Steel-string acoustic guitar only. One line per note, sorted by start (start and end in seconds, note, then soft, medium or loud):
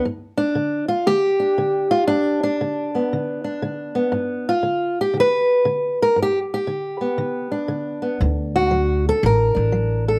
0.05 0.52 G2 medium
0.37 0.88 D4 medium
0.55 1.02 D3 medium
0.88 1.06 F4 medium
1.06 1.53 D3 medium
1.06 2.41 G4 loud
1.40 1.90 D4 soft
1.58 2.05 D3 medium
1.91 2.07 F4 medium
2.07 2.56 G2 medium
2.07 2.40 D4 medium
2.43 3.43 D4 medium
2.61 3.07 D3 medium
2.95 3.95 B3 soft
3.13 3.59 D3 medium
3.44 4.48 D4 soft
3.62 4.09 D3 medium
3.95 4.52 B3 soft
4.12 4.60 G2 medium
4.49 4.98 F4 medium
4.63 5.11 D3 medium
5.01 5.17 G4 medium
5.14 5.61 D3 medium
5.20 6.01 B4 loud
5.65 6.13 D3 medium
6.02 6.19 A#4 medium
6.16 6.64 G2 medium
6.22 6.38 G4 loud
6.54 7.54 G4 medium
6.67 7.15 D3 medium
7.01 8.01 B3 soft
7.18 7.66 D3 medium
7.52 9.54 D4 soft
7.68 8.16 D3 medium
8.02 8.18 B3 soft
8.21 8.68 D3 medium
8.56 9.05 F#4 medium
8.71 9.18 F#3 medium
9.09 9.25 A4 medium
9.24 9.70 A2 medium
9.24 10.08 A#4 loud
9.55 10.19 D4 medium
9.72 10.19 F#3 medium
10.08 10.19 A4 medium